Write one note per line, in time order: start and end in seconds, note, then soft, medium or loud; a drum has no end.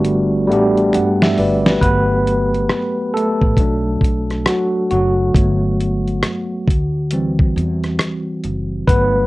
0.00 0.50 G1 loud
0.00 0.36 G3 medium
0.00 0.36 A3 medium
0.00 0.37 B3 medium
0.00 0.38 D4 medium
0.00 0.39 F#4 medium
0.05 closed hi-hat medium
0.47 0.96 A1 medium
0.47 1.55 G3 medium
0.47 1.56 A3 medium
0.47 1.57 B3 medium
0.51 1.57 D4 medium
0.51 0.96 G4 medium
0.51 closed hi-hat medium
0.77 closed hi-hat soft
0.93 1.35 G2 loud
0.93 1.21 D5 soft
0.93 1.21 F#5 medium
0.93 finger snap medium
0.93 closed hi-hat medium
1.22 1.37 E5 medium
1.22 snare medium
1.38 1.79 G1 medium
1.38 1.65 B4 medium
1.38 1.65 D5 medium
1.38 open hi-hat soft
1.66 2.08 G4 medium
1.66 1.80 B4 medium
1.66 snare medium
1.66 closed hi-hat soft
1.81 2.66 G1 loud
1.81 3.10 F#3 medium
1.81 3.11 A3 medium
1.81 3.11 B3 loud
1.81 3.18 B4 loud
1.81 kick loud
1.81 closed hi-hat loud
2.27 closed hi-hat medium
2.54 closed hi-hat soft
2.69 finger snap medium
2.69 cross-stick loud
2.69 closed hi-hat medium
3.14 3.58 A3 medium
3.14 4.42 A4 medium
3.14 closed hi-hat medium
3.41 3.57 A1 loud
3.41 kick medium
3.57 3.99 B1 loud
3.57 4.47 F#3 medium
3.57 5.31 A3 soft
3.57 5.32 D4 medium
3.57 kick medium
3.57 closed hi-hat medium
4.01 4.43 B1 medium
4.01 kick medium
4.01 closed hi-hat medium
4.30 cross-stick soft
4.30 closed hi-hat soft
4.46 4.89 F#3 medium
4.46 4.88 F#4 medium
4.46 finger snap medium
4.46 cross-stick loud
4.46 closed hi-hat medium
4.91 5.32 F#1 loud
4.91 5.35 F#3 medium
4.91 7.51 F#4 medium
4.91 closed hi-hat medium
5.35 6.19 G1 loud
5.35 5.99 F#3 medium
5.35 5.99 A3 medium
5.35 5.99 B3 medium
5.35 kick loud
5.35 closed hi-hat loud
5.80 closed hi-hat medium
6.07 closed hi-hat soft
6.22 finger snap medium
6.22 cross-stick medium
6.22 closed hi-hat medium
6.67 7.51 D2 loud
6.67 kick loud
6.67 closed hi-hat medium
7.11 8.40 E3 medium
7.11 8.40 G3 medium
7.11 8.41 C4 medium
7.11 closed hi-hat medium
7.39 kick medium
7.56 7.97 E2 loud
7.56 closed hi-hat medium
7.84 cross-stick soft
7.84 closed hi-hat soft
7.99 finger snap medium
7.99 cross-stick loud
7.99 closed hi-hat medium
8.44 8.85 F#1 medium
8.44 closed hi-hat medium
8.88 9.27 G1 loud
8.88 9.27 F#3 medium
8.88 9.27 A3 medium
8.88 9.27 B3 loud
8.88 9.27 B4 loud
8.88 kick loud
8.88 closed hi-hat loud